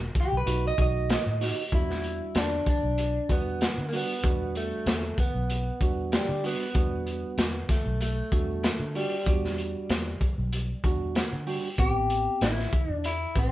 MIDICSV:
0, 0, Header, 1, 6, 480
1, 0, Start_track
1, 0, Key_signature, 1, "minor"
1, 0, Tempo, 628931
1, 1316, Time_signature, 4, 2, 24, 8
1, 10315, End_track
2, 0, Start_track
2, 0, Title_t, "Tine electric piano"
2, 0, Program_c, 0, 4
2, 351, Note_on_c, 0, 57, 82
2, 357, Note_on_c, 0, 63, 71
2, 359, Note_on_c, 0, 66, 92
2, 550, Note_off_c, 0, 57, 0
2, 552, Note_off_c, 0, 63, 0
2, 553, Note_off_c, 0, 66, 0
2, 594, Note_on_c, 0, 57, 78
2, 594, Note_on_c, 0, 63, 65
2, 600, Note_on_c, 0, 66, 81
2, 902, Note_off_c, 0, 57, 0
2, 902, Note_off_c, 0, 63, 0
2, 905, Note_off_c, 0, 66, 0
2, 1072, Note_on_c, 0, 57, 73
2, 1076, Note_on_c, 0, 63, 66
2, 1077, Note_on_c, 0, 66, 78
2, 1232, Note_off_c, 0, 57, 0
2, 1234, Note_off_c, 0, 63, 0
2, 1235, Note_off_c, 0, 66, 0
2, 1314, Note_on_c, 0, 55, 66
2, 1316, Note_on_c, 0, 62, 62
2, 1320, Note_on_c, 0, 66, 70
2, 1927, Note_off_c, 0, 55, 0
2, 1928, Note_off_c, 0, 62, 0
2, 1931, Note_off_c, 0, 66, 0
2, 2509, Note_on_c, 0, 55, 68
2, 2513, Note_on_c, 0, 62, 62
2, 2516, Note_on_c, 0, 66, 75
2, 2818, Note_off_c, 0, 55, 0
2, 2820, Note_off_c, 0, 62, 0
2, 2822, Note_off_c, 0, 66, 0
2, 2995, Note_on_c, 0, 55, 70
2, 2997, Note_on_c, 0, 62, 62
2, 3001, Note_on_c, 0, 66, 68
2, 3153, Note_off_c, 0, 55, 0
2, 3154, Note_off_c, 0, 62, 0
2, 3156, Note_off_c, 0, 66, 0
2, 3234, Note_on_c, 0, 55, 67
2, 3236, Note_on_c, 0, 62, 62
2, 3239, Note_on_c, 0, 66, 75
2, 3847, Note_off_c, 0, 55, 0
2, 3848, Note_off_c, 0, 62, 0
2, 3849, Note_off_c, 0, 66, 0
2, 4434, Note_on_c, 0, 55, 68
2, 4437, Note_on_c, 0, 62, 68
2, 4442, Note_on_c, 0, 66, 76
2, 4741, Note_off_c, 0, 55, 0
2, 4742, Note_off_c, 0, 62, 0
2, 4745, Note_off_c, 0, 66, 0
2, 4909, Note_on_c, 0, 55, 70
2, 4911, Note_on_c, 0, 62, 62
2, 4916, Note_on_c, 0, 66, 78
2, 5069, Note_off_c, 0, 55, 0
2, 5070, Note_off_c, 0, 62, 0
2, 5073, Note_off_c, 0, 66, 0
2, 5151, Note_on_c, 0, 55, 68
2, 5154, Note_on_c, 0, 62, 61
2, 5156, Note_on_c, 0, 66, 74
2, 5766, Note_off_c, 0, 55, 0
2, 5767, Note_off_c, 0, 62, 0
2, 5768, Note_off_c, 0, 66, 0
2, 6351, Note_on_c, 0, 55, 67
2, 6354, Note_on_c, 0, 62, 67
2, 6359, Note_on_c, 0, 66, 76
2, 6659, Note_off_c, 0, 55, 0
2, 6661, Note_off_c, 0, 62, 0
2, 6663, Note_off_c, 0, 66, 0
2, 6829, Note_on_c, 0, 55, 64
2, 6832, Note_on_c, 0, 62, 62
2, 6835, Note_on_c, 0, 66, 77
2, 6989, Note_off_c, 0, 55, 0
2, 6991, Note_off_c, 0, 62, 0
2, 6992, Note_off_c, 0, 66, 0
2, 7071, Note_on_c, 0, 55, 65
2, 7074, Note_on_c, 0, 62, 60
2, 7078, Note_on_c, 0, 66, 77
2, 7686, Note_off_c, 0, 55, 0
2, 7687, Note_off_c, 0, 62, 0
2, 7689, Note_off_c, 0, 66, 0
2, 8274, Note_on_c, 0, 55, 75
2, 8279, Note_on_c, 0, 62, 70
2, 8281, Note_on_c, 0, 66, 95
2, 8517, Note_on_c, 0, 78, 60
2, 8581, Note_off_c, 0, 55, 0
2, 8584, Note_off_c, 0, 62, 0
2, 8585, Note_off_c, 0, 66, 0
2, 8739, Note_off_c, 0, 78, 0
2, 8751, Note_on_c, 0, 55, 77
2, 8754, Note_on_c, 0, 79, 69
2, 8756, Note_on_c, 0, 62, 73
2, 8758, Note_on_c, 0, 66, 84
2, 8911, Note_off_c, 0, 55, 0
2, 8913, Note_off_c, 0, 62, 0
2, 8914, Note_off_c, 0, 66, 0
2, 8978, Note_off_c, 0, 79, 0
2, 8994, Note_on_c, 0, 59, 72
2, 8997, Note_on_c, 0, 60, 65
2, 9001, Note_on_c, 0, 67, 70
2, 9608, Note_off_c, 0, 59, 0
2, 9609, Note_off_c, 0, 60, 0
2, 9611, Note_off_c, 0, 67, 0
2, 10191, Note_on_c, 0, 71, 66
2, 10193, Note_on_c, 0, 60, 62
2, 10197, Note_on_c, 0, 67, 75
2, 10315, Note_off_c, 0, 60, 0
2, 10315, Note_off_c, 0, 67, 0
2, 10315, Note_off_c, 0, 71, 0
2, 10315, End_track
3, 0, Start_track
3, 0, Title_t, "Clean electric guitar"
3, 0, Program_c, 1, 27
3, 157, Note_on_c, 1, 67, 90
3, 263, Note_off_c, 1, 67, 0
3, 284, Note_on_c, 1, 71, 93
3, 499, Note_off_c, 1, 71, 0
3, 515, Note_on_c, 1, 75, 88
3, 608, Note_off_c, 1, 75, 0
3, 624, Note_on_c, 1, 75, 91
3, 1308, Note_off_c, 1, 75, 0
3, 1333, Note_on_c, 1, 64, 101
3, 1809, Note_off_c, 1, 64, 0
3, 1812, Note_on_c, 1, 62, 87
3, 2048, Note_off_c, 1, 62, 0
3, 2057, Note_on_c, 1, 62, 79
3, 2532, Note_on_c, 1, 59, 85
3, 2540, Note_off_c, 1, 62, 0
3, 2963, Note_off_c, 1, 59, 0
3, 2966, Note_on_c, 1, 58, 63
3, 3005, Note_off_c, 1, 58, 0
3, 3023, Note_on_c, 1, 59, 85
3, 3487, Note_off_c, 1, 59, 0
3, 3490, Note_on_c, 1, 57, 93
3, 3965, Note_off_c, 1, 57, 0
3, 3968, Note_on_c, 1, 59, 76
3, 4693, Note_off_c, 1, 59, 0
3, 4696, Note_on_c, 1, 55, 83
3, 4909, Note_off_c, 1, 55, 0
3, 4932, Note_on_c, 1, 59, 88
3, 5880, Note_off_c, 1, 59, 0
3, 5883, Note_on_c, 1, 57, 73
3, 6113, Note_off_c, 1, 57, 0
3, 6122, Note_on_c, 1, 57, 85
3, 6838, Note_off_c, 1, 57, 0
3, 6841, Note_on_c, 1, 55, 65
3, 7067, Note_off_c, 1, 55, 0
3, 7076, Note_on_c, 1, 55, 70
3, 8485, Note_off_c, 1, 55, 0
3, 9003, Note_on_c, 1, 67, 103
3, 9484, Note_on_c, 1, 64, 85
3, 9493, Note_off_c, 1, 67, 0
3, 9858, Note_off_c, 1, 64, 0
3, 9858, Note_on_c, 1, 62, 85
3, 9956, Note_off_c, 1, 62, 0
3, 9965, Note_on_c, 1, 64, 83
3, 10207, Note_off_c, 1, 64, 0
3, 10217, Note_on_c, 1, 60, 91
3, 10315, Note_off_c, 1, 60, 0
3, 10315, End_track
4, 0, Start_track
4, 0, Title_t, "Fingered electric bass"
4, 0, Program_c, 2, 33
4, 245, Note_on_c, 2, 35, 84
4, 329, Note_off_c, 2, 35, 0
4, 352, Note_on_c, 2, 35, 97
4, 535, Note_off_c, 2, 35, 0
4, 595, Note_on_c, 2, 35, 88
4, 875, Note_off_c, 2, 35, 0
4, 964, Note_on_c, 2, 45, 85
4, 1146, Note_off_c, 2, 45, 0
4, 1313, Note_on_c, 2, 40, 85
4, 1677, Note_off_c, 2, 40, 0
4, 1795, Note_on_c, 2, 40, 92
4, 1976, Note_off_c, 2, 40, 0
4, 2162, Note_on_c, 2, 35, 78
4, 2428, Note_off_c, 2, 35, 0
4, 2513, Note_on_c, 2, 40, 78
4, 2793, Note_off_c, 2, 40, 0
4, 2884, Note_on_c, 2, 50, 82
4, 3065, Note_off_c, 2, 50, 0
4, 3231, Note_on_c, 2, 40, 89
4, 3595, Note_off_c, 2, 40, 0
4, 3710, Note_on_c, 2, 40, 95
4, 3893, Note_off_c, 2, 40, 0
4, 4079, Note_on_c, 2, 35, 77
4, 4345, Note_off_c, 2, 35, 0
4, 4431, Note_on_c, 2, 40, 82
4, 4711, Note_off_c, 2, 40, 0
4, 4797, Note_on_c, 2, 50, 82
4, 4981, Note_off_c, 2, 50, 0
4, 5151, Note_on_c, 2, 40, 88
4, 5515, Note_off_c, 2, 40, 0
4, 5630, Note_on_c, 2, 40, 90
4, 5813, Note_off_c, 2, 40, 0
4, 5997, Note_on_c, 2, 35, 84
4, 6264, Note_off_c, 2, 35, 0
4, 6350, Note_on_c, 2, 40, 92
4, 6630, Note_off_c, 2, 40, 0
4, 6713, Note_on_c, 2, 50, 80
4, 6898, Note_off_c, 2, 50, 0
4, 7068, Note_on_c, 2, 40, 86
4, 7433, Note_off_c, 2, 40, 0
4, 7554, Note_on_c, 2, 40, 91
4, 7735, Note_off_c, 2, 40, 0
4, 7922, Note_on_c, 2, 35, 77
4, 8188, Note_off_c, 2, 35, 0
4, 8273, Note_on_c, 2, 40, 86
4, 8553, Note_off_c, 2, 40, 0
4, 8645, Note_on_c, 2, 50, 81
4, 8826, Note_off_c, 2, 50, 0
4, 8991, Note_on_c, 2, 33, 86
4, 9355, Note_off_c, 2, 33, 0
4, 9474, Note_on_c, 2, 33, 84
4, 9656, Note_off_c, 2, 33, 0
4, 9842, Note_on_c, 2, 40, 81
4, 10108, Note_off_c, 2, 40, 0
4, 10193, Note_on_c, 2, 33, 86
4, 10315, Note_off_c, 2, 33, 0
4, 10315, End_track
5, 0, Start_track
5, 0, Title_t, "Muted fingered electric bass strokes"
5, 114, Note_on_c, 9, 29, 33
5, 191, Note_off_c, 9, 29, 0
5, 3953, Note_on_c, 9, 29, 31
5, 4029, Note_off_c, 9, 29, 0
5, 7791, Note_on_c, 9, 29, 30
5, 7867, Note_off_c, 9, 29, 0
5, 10315, End_track
6, 0, Start_track
6, 0, Title_t, "Drums"
6, 115, Note_on_c, 9, 42, 60
6, 116, Note_on_c, 9, 36, 81
6, 191, Note_off_c, 9, 42, 0
6, 192, Note_off_c, 9, 36, 0
6, 357, Note_on_c, 9, 42, 81
6, 434, Note_off_c, 9, 42, 0
6, 596, Note_on_c, 9, 36, 78
6, 596, Note_on_c, 9, 42, 63
6, 672, Note_off_c, 9, 42, 0
6, 673, Note_off_c, 9, 36, 0
6, 836, Note_on_c, 9, 42, 83
6, 843, Note_on_c, 9, 38, 114
6, 912, Note_off_c, 9, 42, 0
6, 919, Note_off_c, 9, 38, 0
6, 1077, Note_on_c, 9, 46, 83
6, 1084, Note_on_c, 9, 38, 35
6, 1153, Note_off_c, 9, 46, 0
6, 1160, Note_off_c, 9, 38, 0
6, 1315, Note_on_c, 9, 36, 88
6, 1316, Note_on_c, 9, 42, 69
6, 1391, Note_off_c, 9, 36, 0
6, 1392, Note_off_c, 9, 42, 0
6, 1452, Note_on_c, 9, 38, 32
6, 1528, Note_off_c, 9, 38, 0
6, 1553, Note_on_c, 9, 42, 63
6, 1630, Note_off_c, 9, 42, 0
6, 1792, Note_on_c, 9, 42, 81
6, 1799, Note_on_c, 9, 38, 105
6, 1868, Note_off_c, 9, 42, 0
6, 1875, Note_off_c, 9, 38, 0
6, 2033, Note_on_c, 9, 42, 55
6, 2034, Note_on_c, 9, 36, 75
6, 2109, Note_off_c, 9, 42, 0
6, 2110, Note_off_c, 9, 36, 0
6, 2273, Note_on_c, 9, 42, 73
6, 2350, Note_off_c, 9, 42, 0
6, 2514, Note_on_c, 9, 36, 72
6, 2516, Note_on_c, 9, 42, 62
6, 2590, Note_off_c, 9, 36, 0
6, 2592, Note_off_c, 9, 42, 0
6, 2755, Note_on_c, 9, 42, 70
6, 2762, Note_on_c, 9, 38, 102
6, 2831, Note_off_c, 9, 42, 0
6, 2838, Note_off_c, 9, 38, 0
6, 2996, Note_on_c, 9, 46, 79
6, 3072, Note_off_c, 9, 46, 0
6, 3233, Note_on_c, 9, 36, 92
6, 3233, Note_on_c, 9, 42, 74
6, 3309, Note_off_c, 9, 36, 0
6, 3310, Note_off_c, 9, 42, 0
6, 3474, Note_on_c, 9, 42, 65
6, 3551, Note_off_c, 9, 42, 0
6, 3712, Note_on_c, 9, 42, 87
6, 3719, Note_on_c, 9, 38, 109
6, 3788, Note_off_c, 9, 42, 0
6, 3795, Note_off_c, 9, 38, 0
6, 3952, Note_on_c, 9, 36, 77
6, 3953, Note_on_c, 9, 42, 58
6, 4029, Note_off_c, 9, 36, 0
6, 4029, Note_off_c, 9, 42, 0
6, 4195, Note_on_c, 9, 42, 82
6, 4271, Note_off_c, 9, 42, 0
6, 4432, Note_on_c, 9, 36, 72
6, 4434, Note_on_c, 9, 42, 65
6, 4508, Note_off_c, 9, 36, 0
6, 4510, Note_off_c, 9, 42, 0
6, 4672, Note_on_c, 9, 42, 82
6, 4679, Note_on_c, 9, 38, 103
6, 4748, Note_off_c, 9, 42, 0
6, 4755, Note_off_c, 9, 38, 0
6, 4915, Note_on_c, 9, 46, 74
6, 4991, Note_off_c, 9, 46, 0
6, 5151, Note_on_c, 9, 36, 91
6, 5152, Note_on_c, 9, 42, 74
6, 5227, Note_off_c, 9, 36, 0
6, 5228, Note_off_c, 9, 42, 0
6, 5392, Note_on_c, 9, 42, 62
6, 5469, Note_off_c, 9, 42, 0
6, 5630, Note_on_c, 9, 42, 74
6, 5637, Note_on_c, 9, 38, 108
6, 5707, Note_off_c, 9, 42, 0
6, 5713, Note_off_c, 9, 38, 0
6, 5869, Note_on_c, 9, 36, 82
6, 5869, Note_on_c, 9, 42, 57
6, 5876, Note_on_c, 9, 38, 32
6, 5945, Note_off_c, 9, 36, 0
6, 5945, Note_off_c, 9, 42, 0
6, 5952, Note_off_c, 9, 38, 0
6, 6110, Note_on_c, 9, 42, 69
6, 6187, Note_off_c, 9, 42, 0
6, 6349, Note_on_c, 9, 36, 78
6, 6350, Note_on_c, 9, 42, 57
6, 6426, Note_off_c, 9, 36, 0
6, 6426, Note_off_c, 9, 42, 0
6, 6590, Note_on_c, 9, 42, 71
6, 6597, Note_on_c, 9, 38, 100
6, 6666, Note_off_c, 9, 42, 0
6, 6673, Note_off_c, 9, 38, 0
6, 6833, Note_on_c, 9, 46, 78
6, 6910, Note_off_c, 9, 46, 0
6, 7071, Note_on_c, 9, 36, 101
6, 7073, Note_on_c, 9, 42, 73
6, 7147, Note_off_c, 9, 36, 0
6, 7150, Note_off_c, 9, 42, 0
6, 7211, Note_on_c, 9, 38, 34
6, 7288, Note_off_c, 9, 38, 0
6, 7313, Note_on_c, 9, 42, 60
6, 7389, Note_off_c, 9, 42, 0
6, 7552, Note_on_c, 9, 42, 78
6, 7559, Note_on_c, 9, 38, 99
6, 7629, Note_off_c, 9, 42, 0
6, 7635, Note_off_c, 9, 38, 0
6, 7791, Note_on_c, 9, 36, 76
6, 7792, Note_on_c, 9, 42, 57
6, 7867, Note_off_c, 9, 36, 0
6, 7869, Note_off_c, 9, 42, 0
6, 8034, Note_on_c, 9, 42, 82
6, 8110, Note_off_c, 9, 42, 0
6, 8271, Note_on_c, 9, 36, 74
6, 8274, Note_on_c, 9, 42, 59
6, 8348, Note_off_c, 9, 36, 0
6, 8350, Note_off_c, 9, 42, 0
6, 8512, Note_on_c, 9, 42, 87
6, 8519, Note_on_c, 9, 38, 99
6, 8588, Note_off_c, 9, 42, 0
6, 8595, Note_off_c, 9, 38, 0
6, 8753, Note_on_c, 9, 46, 73
6, 8829, Note_off_c, 9, 46, 0
6, 8993, Note_on_c, 9, 36, 100
6, 8993, Note_on_c, 9, 42, 79
6, 9069, Note_off_c, 9, 36, 0
6, 9069, Note_off_c, 9, 42, 0
6, 9234, Note_on_c, 9, 42, 68
6, 9310, Note_off_c, 9, 42, 0
6, 9473, Note_on_c, 9, 42, 79
6, 9480, Note_on_c, 9, 38, 102
6, 9550, Note_off_c, 9, 42, 0
6, 9556, Note_off_c, 9, 38, 0
6, 9612, Note_on_c, 9, 38, 31
6, 9688, Note_off_c, 9, 38, 0
6, 9713, Note_on_c, 9, 36, 84
6, 9714, Note_on_c, 9, 42, 59
6, 9790, Note_off_c, 9, 36, 0
6, 9791, Note_off_c, 9, 42, 0
6, 9952, Note_on_c, 9, 42, 81
6, 10029, Note_off_c, 9, 42, 0
6, 10192, Note_on_c, 9, 42, 57
6, 10193, Note_on_c, 9, 36, 73
6, 10268, Note_off_c, 9, 42, 0
6, 10269, Note_off_c, 9, 36, 0
6, 10315, End_track
0, 0, End_of_file